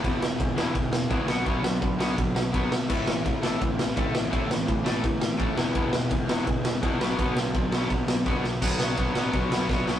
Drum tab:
CC |--------|--------|x-------|--------|
RD |x-x-x-x-|x-x-x-x-|--x-x-x-|x-x-x-x-|
SD |-o-o-o-o|-o-o-o-o|-o-o-o-o|-o-o-o-o|
BD |o-o-o-o-|o-o-o-o-|o-o-o-o-|o-o-o-o-|

CC |--------|--------|x-------|
RD |x-x-x-x-|x-x-x-x-|--x-x---|
SD |-o-o-o-o|-o-o-o-o|-o-o-ooo|
BD |o-o-o-o-|o-o-o-o-|o-o-o-o-|